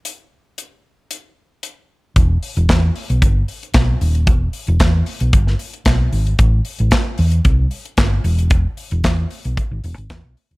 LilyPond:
<<
  \new Staff \with { instrumentName = "Fingered electric bass" } { \clef bass \time 4/4 \key e \minor \tempo 4 = 113 r1 | e,,8 r16 e,,16 e,8 r16 b,,16 g,,8 r8 b,,8 dis,,8 | e,,8 r16 e,,16 e,8 r16 b,,16 g,,8 r8 b,,8 gis,,8 | a,,8 r16 a,,16 r8 e,8 c,8 r8 g,,8 e,,8~ |
e,,8 r16 e,,16 e,8 r16 b,,16 r16 gis,,16 e,,16 gis,,16 e,16 b,,16 r16 dis,,16 | }
  \new DrumStaff \with { instrumentName = "Drums" } \drummode { \time 4/4 hh4 hh4 hh4 hh4 | <hh bd>8 hho16 hh16 <hc hh bd sn>8 hho16 hh16 <hh bd>8 hho16 hh16 <hc hh bd sn>8 hho16 hh16 | <hh bd>8 hho16 hh16 <hc hh bd sn>8 hho16 hh16 <hh bd>16 sn16 hho16 hh16 <hc hh bd sn>8 hho16 hh16 | <hh bd>8 hho16 hh16 <hc hh bd sn>8 hho16 hh16 <hh bd>8 hho16 hh16 <hc hh bd sn>8 hho16 hh16 |
<hh bd>8 hho16 hh16 <hc hh bd sn>8 hho16 hh16 <hh bd>8 hho16 hh16 <hc hh bd sn>8 hho16 hh16 | }
>>